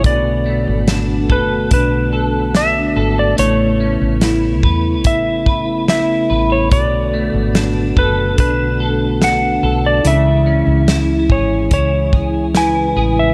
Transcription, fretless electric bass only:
X:1
M:4/4
L:1/16
Q:1/4=72
K:Bdor
V:1 name="Fretless electric bass" clef=bass
B,,,3 G,,,3 F,,,2 B,,,6 G,,,2 | A,,,3 A,,,3 E,,2 A,,,6 A,,,2 | B,,,3 G,,,3 F,,,2 B,,,6 B,,,2 | C,,3 C,,3 G,,,2 C,,6 A,,,2 |]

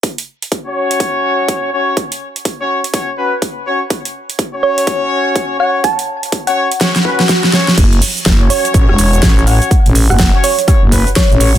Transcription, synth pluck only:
X:1
M:4/4
L:1/16
Q:"Swing 16ths" 1/4=124
K:F#m
V:1 name="Synth pluck"
z16 | z16 | z6 c2 z6 f2 | a2 z3 f3 z8 |
z6 c2 z6 f2 | z3 f f z c2 z4 c3 z |]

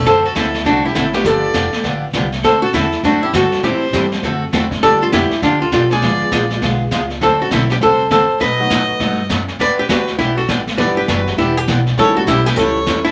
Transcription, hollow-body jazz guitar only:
X:1
M:4/4
L:1/8
Q:"Swing" 1/4=201
K:Dmix
V:1 name="Hollow-body jazz guitar"
A F E2 D E E G | A4 z4 | A F E2 D E F2 | G4 z4 |
A =F E2 D F F ^G- | ^G4 z4 | A F E G A2 A2 | B6 z2 |
B G F2 E F z2 | B G F2 E G z2 | A F E G A3 E |]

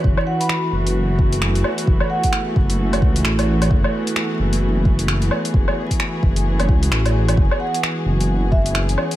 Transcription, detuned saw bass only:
X:1
M:4/4
L:1/16
Q:"Swing 16ths" 1/4=131
K:F#m
V:1 name="Detuned saw bass" clef=bass
F,,, z4 z F,,,8 z2 | F,,, z4 z F,,,4 C,,2 A,,,4 | F,,, z4 z F,,,8 z2 | F,,, z4 z F,,,4 C,,2 A,,,4 |
F,,, z4 z F,,,8 z2 |]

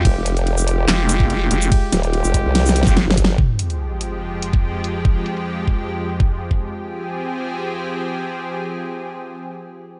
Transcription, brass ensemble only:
X:1
M:4/4
L:1/16
Q:1/4=144
K:Fm
V:1 name="Brass ensemble"
[A,FG]3 [A,FG]12- [A,FG]- | [A,FG]3 [A,FG]8 [A,FG] z4 | z16 | z16 |
z16 | z16 |]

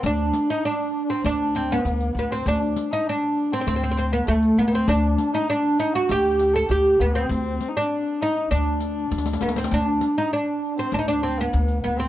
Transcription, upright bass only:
X:1
M:4/4
L:1/8
Q:1/4=99
K:none
V:1 name="Upright bass" clef=bass
D,, z3 D,,2 D,, D,, | D,, z3 D,,2 D,, D,, | D,, z3 D,,2 D,, D,, | D,, z3 D,,2 D,, D,, |
D,, z3 D,,2 D,, D,, |]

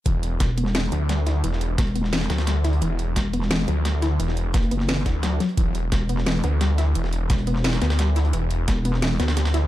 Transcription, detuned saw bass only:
X:1
M:4/4
L:1/8
Q:1/4=174
K:Em
V:1 name="Detuned saw bass" clef=bass
E,,,2 z3 D,,3 | E,,,2 z3 D,,3 | E,,,2 z3 D,,3 | E,,,2 z3 D,,2 z |
E,,,2 z3 D,,3 | E,,,2 z3 D,,3 | E,,,2 z3 D,,3 |]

